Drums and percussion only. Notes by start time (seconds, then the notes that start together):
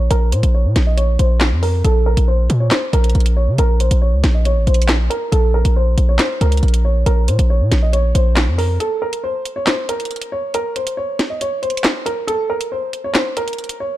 0.11 closed hi-hat
0.32 closed hi-hat
0.43 closed hi-hat
0.76 snare, closed hi-hat
0.98 closed hi-hat
1.19 closed hi-hat
1.41 snare, clap
1.63 open hi-hat
1.85 closed hi-hat
2.17 closed hi-hat
2.50 closed hi-hat
2.71 snare, clap, closed hi-hat
2.93 closed hi-hat
3.04 closed hi-hat
3.10 closed hi-hat
3.15 closed hi-hat
3.20 closed hi-hat
3.26 closed hi-hat
3.58 closed hi-hat
3.80 closed hi-hat
3.91 closed hi-hat
4.24 snare, closed hi-hat
4.45 closed hi-hat
4.67 closed hi-hat
4.74 closed hi-hat
4.82 closed hi-hat
4.88 snare, clap
5.11 closed hi-hat
5.32 closed hi-hat
5.65 closed hi-hat
5.98 closed hi-hat
6.19 snare, clap, closed hi-hat
6.41 closed hi-hat
6.52 closed hi-hat
6.57 closed hi-hat
6.63 closed hi-hat
6.68 closed hi-hat
6.74 closed hi-hat
7.06 closed hi-hat
7.28 closed hi-hat
7.39 closed hi-hat
7.72 snare, closed hi-hat
7.93 closed hi-hat
8.15 closed hi-hat
8.36 snare, clap
8.59 open hi-hat
8.80 closed hi-hat
9.13 closed hi-hat
9.45 closed hi-hat
9.67 snare, clap, closed hi-hat
9.89 closed hi-hat
10.00 closed hi-hat
10.05 closed hi-hat
10.11 closed hi-hat
10.16 closed hi-hat
10.21 closed hi-hat
10.54 closed hi-hat
10.76 closed hi-hat
10.87 closed hi-hat
11.19 snare, closed hi-hat
11.41 closed hi-hat
11.63 closed hi-hat
11.70 closed hi-hat
11.77 closed hi-hat
11.84 snare, clap
12.06 closed hi-hat
12.28 closed hi-hat
12.61 closed hi-hat
12.93 closed hi-hat
13.15 snare, clap, closed hi-hat
13.37 closed hi-hat
13.48 closed hi-hat
13.53 closed hi-hat
13.58 closed hi-hat
13.64 closed hi-hat
13.69 closed hi-hat